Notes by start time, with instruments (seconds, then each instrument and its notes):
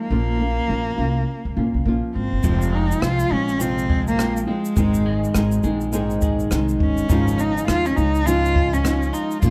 Already playing: nylon-string guitar F3 G#3 D#4 F4
0.00 cello A#3
0.10 upright bass A#1, nylon-string guitar A#2 F3 A#3 C#4 F4
0.39 nylon-string guitar A#3 C#4 F4
0.67 upright bass A#1, nylon-string guitar F3 A#3 C#4 F4
0.98 upright bass C2, nylon-string guitar A#3 C#4 F4
1.45 upright bass C#2
1.57 upright bass A#1, nylon-string guitar A#3 C#4 F4
1.74 upright bass C2
1.85 upright bass A#1, nylon-string guitar F3 A#3 C#4 F4
2.15 upright bass G#1, cello C4
2.32 upright bass G1
2.43 upright bass F1, nylon-string guitar F2 C3 F3 G#3 C4 F4, kick, shaker
2.62 shaker
2.73 clean electric guitar G#3, cello D#4
2.91 shaker
3.01 upright bass C2, nylon-string guitar F3 G#3 C4 F4, cello F4, cross-stick, shaker
3.19 shaker
3.30 upright bass A#1, nylon-string guitar F3 G#3 C4 F4, cello C#4
3.48 cross-stick, shaker
3.58 nylon-string guitar F2 C3 F3 G#3 C4 F4, cello C4, shaker
3.78 shaker
3.89 clean electric guitar G#3, kick
4.07 cello A#3, shaker
4.17 nylon-string guitar F3 G#3 C4 F4, cross-stick, shaker
4.37 shaker
4.47 nylon-string guitar F3 G#3 C4 F4, cello G#3
4.65 shaker
4.76 upright bass G#1, nylon-string guitar G#2 D#3 G#3 C4 D#4 G#4, kick, shaker
4.94 shaker
5.06 clean electric guitar G#3
5.24 shaker
5.34 upright bass G#1, clean electric guitar D#3, nylon-string guitar G#3 C4 D#4 G#4, cross-stick, shaker
5.52 shaker
5.63 upright bass A#1, nylon-string guitar G#3 C4 D#4 G#4, shaker
5.81 shaker
5.93 nylon-string guitar G#2 D#3 G#3 C4 D#4 G#4, shaker
6.10 shaker
6.22 clean electric guitar G#3, kick, shaker
6.39 shaker
6.51 upright bass C2, clean electric guitar D#3, nylon-string guitar G#3 C4 D#4 G#4, cross-stick, shaker
6.69 shaker
6.80 upright bass G1, cello C#4, kick
6.98 shaker
7.09 upright bass G#1, nylon-string guitar G#2 C#3 F3 G#3 D#4 F4, clean electric guitar D#3, kick, shaker
7.28 shaker
7.38 clean electric guitar C#4, cello D#4, shaker
7.58 shaker
7.67 upright bass D#2, nylon-string guitar F3 G#3 D#4 F4, cello F4, cross-stick, shaker
7.86 cello C#4, shaker
7.96 upright bass C#2, nylon-string guitar F3 G#3 D#4 F4, clean electric guitar C#4, cello D#4, shaker
8.15 shaker
8.25 nylon-string guitar G#2 C#3 F3 G#3 D#4 F4, cello F4, shaker
8.45 shaker
8.55 clean electric guitar C#4, kick
8.73 cello C#4, shaker
8.84 nylon-string guitar F3 G#3 D#4 F4, cross-stick, shaker
9.03 shaker
9.13 cello D#4, clean electric guitar F4, shaker
9.31 shaker
9.41 upright bass A#1, nylon-string guitar A#2 F3 A#3 C#4 F4, cello F4, kick, shaker